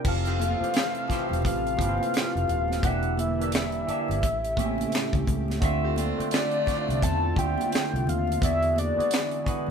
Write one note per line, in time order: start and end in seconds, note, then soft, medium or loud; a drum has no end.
0.03 0.53 F1 medium
0.03 2.80 C3 medium
0.03 0.55 E3 medium
0.03 0.54 F3 medium
0.03 2.80 A3 medium
0.03 0.54 C4 medium
0.03 0.55 G4 medium
0.03 2.80 F5 medium
0.03 kick loud
0.03 crash medium
0.03 muted conga soft
0.08 0.56 A4 loud
0.08 1.41 F5 loud
0.25 0.36 C4 medium
0.25 0.36 E4 medium
0.25 0.36 G4 medium
0.25 closed hi-hat soft
0.39 0.67 A3 medium
0.39 0.67 C4 medium
0.39 0.67 F4 medium
0.39 closed hi-hat medium
0.39 muted conga soft
0.39 high conga medium
0.60 1.06 E3 medium
0.60 1.05 F3 medium
0.60 1.05 C4 medium
0.60 1.07 G4 medium
0.60 1.07 C5 medium
0.60 muted fingered electric bass stroke soft
0.60 closed hi-hat soft
0.73 1.74 E3 medium
0.73 1.74 A3 medium
0.73 1.74 C4 medium
0.73 finger snap medium
0.73 snare loud
0.73 closed hi-hat medium
0.73 muted conga soft
0.95 closed hi-hat soft
1.08 1.74 E3 medium
1.08 1.73 F3 medium
1.08 1.73 C4 medium
1.08 1.74 G4 medium
1.08 muted fingered electric bass stroke soft
1.08 kick medium
1.08 closed hi-hat medium
1.08 muted conga soft
1.12 1.75 C5 medium
1.12 snare soft
1.29 1.43 E1 medium
1.29 low conga medium
1.33 closed hi-hat soft
1.42 1.81 A1 loud
1.42 kick loud
1.42 closed hi-hat medium
1.42 muted conga soft
1.47 2.86 F5 loud
1.67 closed hi-hat soft
1.77 1.97 G1 medium
1.77 2.76 E3 medium
1.77 2.75 F3 medium
1.77 2.75 C4 medium
1.77 kick medium
1.77 closed hi-hat medium
1.77 high conga medium
1.81 2.77 G4 medium
1.81 1.88 B4 medium
1.89 2.80 C5 medium
1.98 high conga medium
2.03 closed hi-hat soft
2.14 finger snap medium
2.14 snare loud
2.14 closed hi-hat medium
2.35 2.47 F1 medium
2.35 closed hi-hat soft
2.48 2.79 D#1 medium
2.48 closed hi-hat medium
2.48 muted conga soft
2.48 low conga medium
2.68 snare soft
2.68 high conga medium
2.73 closed hi-hat medium
2.82 3.84 E1 medium
2.82 4.21 D3 medium
2.82 3.33 E3 medium
2.82 4.21 G3 medium
2.82 3.33 A#3 medium
2.82 3.34 D4 medium
2.82 4.22 E4 medium
2.82 3.34 G4 medium
2.82 3.21 F#5 loud
2.82 kick loud
2.82 closed hi-hat medium
2.87 3.35 E5 loud
3.03 closed hi-hat soft
3.17 5.28 E5 medium
3.17 closed hi-hat medium
3.17 high conga medium
3.39 3.84 E3 medium
3.39 3.84 A#3 medium
3.39 3.85 D4 medium
3.39 3.85 G4 medium
3.39 closed hi-hat soft
3.43 3.86 E5 medium
3.52 finger snap medium
3.52 snare loud
3.52 closed hi-hat medium
3.72 closed hi-hat soft
3.87 4.22 E3 medium
3.87 4.23 A#3 medium
3.87 4.23 D4 medium
3.87 4.24 G4 medium
3.87 muted fingered electric bass stroke soft
3.87 closed hi-hat medium
3.91 4.24 E5 medium
4.08 4.21 G1 loud
4.08 closed hi-hat soft
4.08 low conga medium
4.22 4.84 A1 loud
4.22 5.61 C#3 medium
4.22 5.62 A3 medium
4.22 5.61 G4 medium
4.22 kick loud
4.22 closed hi-hat medium
4.22 muted conga soft
4.44 closed hi-hat soft
4.56 5.54 A2 loud
4.56 5.54 A3 medium
4.56 4.66 C4 medium
4.56 5.55 G4 medium
4.56 kick medium
4.56 closed hi-hat medium
4.56 muted conga soft
4.56 high conga medium
4.60 5.56 E5 loud
4.65 5.58 C#4 medium
4.78 closed hi-hat soft
4.78 high conga medium
4.92 finger snap medium
4.92 snare medium
4.92 closed hi-hat medium
4.92 muted conga soft
5.13 5.26 C#2 medium
5.13 kick medium
5.13 closed hi-hat soft
5.27 5.58 C#2 medium
5.27 kick medium
5.27 closed hi-hat medium
5.27 muted conga soft
5.27 low conga medium
5.48 snare soft
5.48 closed hi-hat medium
5.48 high conga medium
5.60 6.11 D2 medium
5.60 6.11 D3 loud
5.60 9.71 D3 medium
5.60 6.12 A3 medium
5.60 8.38 C4 medium
5.60 6.12 C4 medium
5.60 8.38 F4 medium
5.60 6.13 F4 medium
5.60 kick loud
5.60 closed hi-hat medium
5.65 6.13 E5 loud
5.83 5.94 C4 medium
5.83 5.94 E4 medium
5.83 5.94 G4 medium
5.96 6.25 C4 medium
5.96 6.25 D4 medium
5.96 6.25 F4 medium
5.96 closed hi-hat medium
5.96 high conga medium
6.17 6.62 D3 medium
6.17 6.63 A3 medium
6.17 6.63 C4 medium
6.17 6.64 F4 medium
6.17 6.64 G5 medium
6.17 muted fingered electric bass stroke soft
6.17 closed hi-hat soft
6.31 7.33 A3 medium
6.31 7.33 D4 loud
6.31 7.32 F4 medium
6.31 finger snap medium
6.31 snare loud
6.31 closed hi-hat medium
6.31 muted conga soft
6.36 7.05 D5 medium
6.51 closed hi-hat soft
6.66 7.31 D3 medium
6.66 7.32 A3 medium
6.66 7.32 C4 medium
6.66 6.76 E4 medium
6.66 muted fingered electric bass stroke soft
6.66 kick medium
6.66 snare soft
6.66 closed hi-hat medium
6.66 muted conga soft
6.71 7.33 D5 medium
6.76 7.36 F4 medium
6.88 7.00 C2 medium
6.88 closed hi-hat soft
6.88 low conga medium
7.02 7.33 E2 loud
7.02 7.40 A5 loud
7.02 kick loud
7.02 closed hi-hat medium
7.35 7.55 D2 medium
7.35 8.33 D3 medium
7.35 8.33 A3 medium
7.35 8.33 C4 medium
7.35 8.34 F4 medium
7.35 8.10 G5 loud
7.35 kick medium
7.35 closed hi-hat medium
7.35 muted conga soft
7.35 high conga medium
7.40 8.35 E5 medium
7.58 closed hi-hat soft
7.58 high conga medium
7.72 finger snap medium
7.72 snare medium
7.72 closed hi-hat medium
7.72 muted conga soft
7.93 8.05 C2 medium
7.93 closed hi-hat soft
8.07 8.37 D#2 medium
8.07 8.43 F5 medium
8.07 closed hi-hat medium
8.07 muted conga soft
8.07 low conga medium
8.27 high conga medium
8.32 closed hi-hat medium
8.40 8.90 E2 loud
8.40 8.91 E3 medium
8.40 9.71 G#3 medium
8.40 8.91 B3 medium
8.40 9.71 E4 medium
8.40 8.92 F#4 medium
8.40 8.92 G#4 medium
8.40 8.80 E5 loud
8.40 kick loud
8.40 closed hi-hat medium
8.45 8.93 D5 medium
8.63 closed hi-hat soft
8.76 9.47 D5 medium
8.76 closed hi-hat medium
8.76 high conga medium
8.96 9.41 E3 medium
8.96 9.42 B3 medium
8.96 9.42 F#4 medium
8.96 9.43 G#4 medium
8.96 muted fingered electric bass stroke soft
9.00 9.43 D5 medium
9.00 closed hi-hat soft
9.11 finger snap medium
9.11 snare loud
9.11 closed hi-hat medium
9.31 closed hi-hat soft
9.44 9.71 E3 medium
9.44 9.71 B3 medium
9.44 9.71 F#4 medium
9.44 9.71 G#4 medium
9.44 9.71 B4 medium
9.44 muted fingered electric bass stroke soft
9.44 kick medium
9.44 closed hi-hat medium
9.67 low conga medium